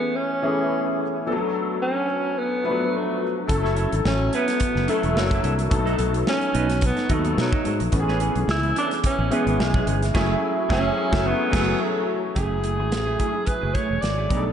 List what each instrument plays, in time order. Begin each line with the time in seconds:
Already playing: grand piano E3 A3 B3 C#4 G#4, alto saxophone B3
0.16 alto saxophone C#4
0.42 grand piano E3 A3 B3 C#4 G#4
1.26 grand piano F3 A3 B3 D4 A4
1.32 grand piano F#3
1.82 alto saxophone C#4
2.38 alto saxophone B3
2.64 grand piano F3 A3 B3 D4 B4
2.71 grand piano F#3
2.97 alto saxophone A3
3.47 fretless electric bass F#1, grand piano F#3 A3 C#4 E4 A4, kick, closed hi-hat
3.63 clean electric guitar C#4 E4 A4, snare
3.75 clean electric guitar C#4 E4 A4, closed hi-hat
3.92 fretless electric bass G#1, muted clean electric guitar stroke, closed hi-hat
4.05 fretless electric bass A1, alto saxophone C#4, muted clean electric guitar stroke, snare
4.21 muted clean electric guitar stroke
4.33 alto saxophone B3, clean electric guitar C#4 E4 B4, closed hi-hat
4.48 muted clean electric guitar stroke, snare, closed hi-hat
4.60 muted clean electric guitar stroke, kick, closed hi-hat
4.75 fretless electric bass F#1, clean electric guitar C#4 E4 A4, snare
4.87 grand piano F#3 A3 C#4 E4 A4, alto saxophone A3, clean electric guitar C#4 E4 A4, closed hi-hat
5.03 fretless electric bass E1, muted clean electric guitar stroke, closed hi-hat
5.14 fretless electric bass F#1, grand piano F#3 A#3 D4 E4 A4, muted clean electric guitar stroke, snare
5.19 alto saxophone F#3
5.30 clean electric guitar A#3 E4 A4, kick, closed hi-hat
5.42 fretless electric bass C2, clean electric guitar A#3 E4 A4, closed hi-hat
5.57 muted clean electric guitar stroke, closed hi-hat
5.70 fretless electric bass B1, grand piano F#3 A3 B3 D#4 A4, muted clean electric guitar stroke, kick, closed hi-hat
5.85 clean electric guitar B3 D#4 A4, closed hi-hat
5.98 fretless electric bass B1, clean electric guitar B3 D#4 A4, closed hi-hat
6.13 muted clean electric guitar stroke, closed hi-hat
6.26 alto saxophone C#4, muted clean electric guitar stroke, snare
6.41 muted clean electric guitar stroke, closed hi-hat
6.53 fretless electric bass B1, clean electric guitar B3 D#4 B4, closed hi-hat
6.70 muted clean electric guitar stroke, snare, closed hi-hat
6.81 muted clean electric guitar stroke, kick, closed hi-hat
6.86 alto saxophone B3
6.96 clean electric guitar B3 D#4 A4, snare, closed hi-hat
7.09 fretless electric bass D#2, grand piano F#3 A3 B3 D#4 A4, clean electric guitar B3 D#4 A4, kick, closed hi-hat
7.14 alto saxophone A3
7.25 muted clean electric guitar stroke, closed hi-hat
7.37 fretless electric bass B2, muted clean electric guitar stroke, snare
7.41 alto saxophone F#3
7.52 clean electric guitar B3 D#4 A4, kick
7.65 fretless electric bass G#2, clean electric guitar B3 D#4 A4, closed hi-hat
7.80 fretless electric bass A#1, muted clean electric guitar stroke, closed hi-hat
7.92 fretless electric bass A1, grand piano E3 A3 B3 C#4 F#4, muted clean electric guitar stroke, kick, closed hi-hat
8.00 grand piano G#4
8.08 clean electric guitar B3 C#4 G#4, snare
8.20 clean electric guitar B3 C#4 G#4, closed hi-hat
8.35 fretless electric bass B1, muted clean electric guitar stroke, closed hi-hat
8.48 fretless electric bass C#2, alto saxophone E4, muted clean electric guitar stroke, snare
8.63 muted clean electric guitar stroke, closed hi-hat
8.76 clean electric guitar B3 C#4 A4, alto saxophone D4, closed hi-hat
8.91 muted clean electric guitar stroke, snare, closed hi-hat
9.04 alto saxophone C#4, muted clean electric guitar stroke, kick, closed hi-hat
9.18 fretless electric bass A1, clean electric guitar B3 C#4 G#4
9.30 grand piano E3 G#3 B3 C#4 G#4, clean electric guitar B3 C#4 G#4, alto saxophone B3, closed hi-hat
9.46 fretless electric bass G#1, muted clean electric guitar stroke, closed hi-hat
9.58 fretless electric bass B1, alto saxophone G#3, muted clean electric guitar stroke, snare
9.74 clean electric guitar B3 C#4 G#4, kick
9.87 fretless electric bass G1, clean electric guitar B3 C#4 G#4, closed hi-hat
10.02 muted clean electric guitar stroke, snare, closed hi-hat
10.14 fretless electric bass F#1, grand piano F#3 A3 C#4 E4 G#4, clean electric guitar A3 E4 G#4, kick, snare, crash
10.69 fretless electric bass F#1, grand piano F#3 A3 C#4 E4 G#4, clean electric guitar A3 E4 G#4, alto saxophone C#4, kick, snare
11.11 fretless electric bass F#1, grand piano F#3 A3 C#4 E4 G#4, clean electric guitar A3 E4 A4, kick, snare
11.27 alto saxophone B3
11.51 fretless electric bass F#1, grand piano F#3 A3 C#4 E4 G#4, clean electric guitar A3 E4 G#4, kick, snare, crash
11.81 alto saxophone A3
12.35 fretless electric bass F#1, grand piano F#3 A3 C#4 E4 G#4, clean electric guitar A3 E4 G#4, alto saxophone G#4, kick, closed hi-hat
12.50 muted clean electric guitar stroke
12.63 clean electric guitar A3 E4 G#4, closed hi-hat
12.78 fretless electric bass G#1, clean electric guitar A3 E4 G#4
12.91 fretless electric bass A1, muted clean electric guitar stroke, snare, closed hi-hat
13.06 clean electric guitar A3 E4 G#4
13.18 grand piano F#3 A3 C#4 E4 G#4, clean electric guitar A3 E4 G#4, kick, closed hi-hat
13.32 grand piano F#3 A3 C#4 E4 G#4, muted clean electric guitar stroke
13.46 alto saxophone B4, muted clean electric guitar stroke, kick, closed hi-hat
13.61 fretless electric bass F#1, clean electric guitar A3 E4 G#4
13.74 clean electric guitar A3 E4 G#4, alto saxophone C#5, kick, closed hi-hat
13.89 fretless electric bass E1, muted clean electric guitar stroke
14.01 fretless electric bass G#1, alto saxophone D5, muted clean electric guitar stroke, snare, closed hi-hat
14.18 clean electric guitar A3 E4 G#4
14.29 fretless electric bass B1, grand piano G3 B3 D4 D#4 G#4, clean electric guitar A3 D#4 G4, kick, closed hi-hat
14.37 grand piano A4
14.46 muted clean electric guitar stroke